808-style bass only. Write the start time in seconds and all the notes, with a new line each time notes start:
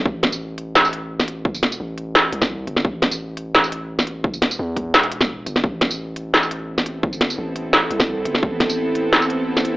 0.05 A1
0.75 A1
1.80 A1
2.32 C2
2.67 G1
2.85 A1
3.54 A1
4.59 E2
4.94 E1
5.46 G1
5.64 A1
6.33 A1
7.06 G#1
7.38 A1
7.91 C2
8.25 G1
8.43 A1
9.13 A1